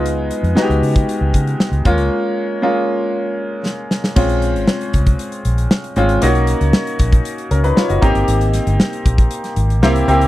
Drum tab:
CC |----------------|----------------|x---------------|----------------|
HH |x-xx-xoxx-xx-xxx|----------------|-xxx-xxxxxxx-xxx|xxxx-xxxxxxx-xxx|
SD |----o-------o---|------------o-oo|----o-------o---|----o-------o---|
BD |-------o--o---o-|----------------|o-----oo--------|------oo------o-|

CC |----------------|
HH |xxxx-xxxxxxx-xxx|
SD |--o-o----o--o---|
BD |------oo--------|